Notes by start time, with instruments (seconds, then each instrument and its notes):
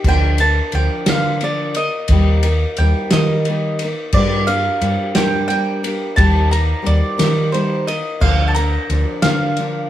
0.04 fingered electric bass D2, steel-string acoustic guitar D3 F3 A#3 D4 A#4, kick, crash
0.09 mandolin G5
0.38 steel-string acoustic guitar D4 A#4, mandolin A5, ride
0.43 steel-string acoustic guitar A#3
0.72 fingered electric bass D2, steel-string acoustic guitar F3 A#3 D4, mandolin G5, ride
0.77 steel-string acoustic guitar A#4
1.06 fingered electric bass D3, steel-string acoustic guitar D3 F3 A#3 D4 A#4, mandolin F5, snare, ride
1.41 steel-string acoustic guitar F3 A#3 D4 A#4, mandolin D5, ride
1.75 steel-string acoustic guitar A#3 A#4, mandolin D#5, ride
2.08 fingered electric bass D#2, steel-string acoustic guitar D#3 A#3 D#4, kick, ride
2.12 steel-string acoustic guitar G3 A#4
2.43 steel-string acoustic guitar A#3 D#4 A#4, ride
2.77 fingered electric bass D#2, steel-string acoustic guitar G3 A#3, mandolin G5, ride
2.81 steel-string acoustic guitar D#4 A#4
3.11 fingered electric bass D#3, steel-string acoustic guitar G3 A#3 D#4 A#4, mandolin D#5, snare, ride
3.15 steel-string acoustic guitar D#3
3.45 steel-string acoustic guitar G3, ride
3.49 steel-string acoustic guitar A#3 D#4 A#4
3.79 steel-string acoustic guitar A#4, ride
3.84 steel-string acoustic guitar A#3 D#4
4.12 fingered electric bass G2, steel-string acoustic guitar G2 D3 G3 A#3, mandolin D5, kick, crash
4.17 steel-string acoustic guitar D4 A#4
4.47 steel-string acoustic guitar G3 A#3 D4 A#4, mandolin F5, ride
4.81 fingered electric bass G2, steel-string acoustic guitar G3 A#3 D4 A#4, ride
5.15 steel-string acoustic guitar G2 D3 G3 A#3 D4 A#4, fingered electric bass G3, mandolin G5, snare, ride
5.48 steel-string acoustic guitar G3 A#3 D4, mandolin G5, ride
5.53 steel-string acoustic guitar A#4
5.83 steel-string acoustic guitar G3 A#3 D4 A#4, ride
6.16 fingered electric bass D#2, steel-string acoustic guitar D#3 G3 A#3 D#4 A#4, mandolin A5, kick, ride
6.51 steel-string acoustic guitar A#3 D#4 A#4, mandolin A#5, ride
6.82 steel-string acoustic guitar G3 A#3 D#4 A#4
6.86 fingered electric bass D#2, mandolin D5, ride
7.18 fingered electric bass D#3, steel-string acoustic guitar D#3 G3 A#3 D#4 A#4, snare, ride
7.52 steel-string acoustic guitar G3 A#3 D#4 A#4, mandolin C5, ride
7.87 steel-string acoustic guitar A#3 D#4 A#4, mandolin D#5, ride
8.20 fingered electric bass D2, steel-string acoustic guitar D3 F3 A#3 D4 A#4, mandolin F5, kick, crash
8.48 mandolin A5
8.55 steel-string acoustic guitar A#3 D4 A#4, mandolin A#5, ride
8.90 fingered electric bass D2, steel-string acoustic guitar F3 A#3 D4 A#4, ride
9.22 fingered electric bass D3, steel-string acoustic guitar D3 F3 A#3 D4 A#4, mandolin F5, snare, ride
9.57 steel-string acoustic guitar F3 A#3 D4, ride
9.61 steel-string acoustic guitar A#4